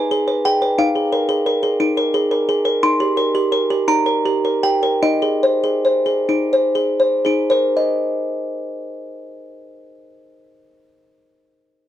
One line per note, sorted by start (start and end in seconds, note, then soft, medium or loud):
0.00 0.75 D#4 soft
0.00 0.21 B4 soft
0.00 0.42 G#5 medium
0.11 0.38 G#4 soft
0.28 0.55 B4 soft
0.45 0.72 G#4 soft
0.45 0.77 G5 medium
0.62 0.78 B4 soft
0.78 1.79 D#4 medium
0.78 2.44 F5 medium
0.95 1.22 G#4 soft
1.12 1.39 A#4 soft
1.29 1.56 G#4 soft
1.46 1.73 A#4 soft
1.63 1.90 G#4 soft
1.80 2.79 D#4 medium
1.97 2.24 A#4 soft
2.14 2.41 G#4 medium
2.31 2.58 A#4 soft
2.49 2.76 G#4 soft
2.65 2.82 A#4 soft
2.83 3.87 D#4 medium
2.83 3.85 C6 loud
3.00 3.28 G4 soft
3.17 3.45 A#4 soft
3.35 3.63 G4 soft
3.52 3.81 A#4 soft
3.70 3.99 G4 soft
3.88 4.99 D#4 soft
3.88 4.60 A#5 medium
4.06 4.36 A#4 soft
4.26 4.56 G4 soft
4.45 4.75 A#4 soft
4.63 4.95 G4 soft
4.63 5.01 G5 medium
4.83 5.03 A#4 soft
5.03 6.28 D#4 medium
5.03 7.21 D#5 medium
5.22 5.55 G#4 soft
5.43 5.77 C5 soft
5.64 5.98 G#4 soft
5.85 6.20 C5 soft
6.06 6.42 G#4 soft
6.29 7.25 D#4 soft
6.53 6.90 C5 soft
6.75 7.14 G#4 soft
7.00 7.40 C5 soft
7.25 10.65 D#4 soft
7.25 7.66 G#4 soft
7.50 10.90 A#4 soft
7.50 7.76 C5 soft
7.77 11.15 D#5 soft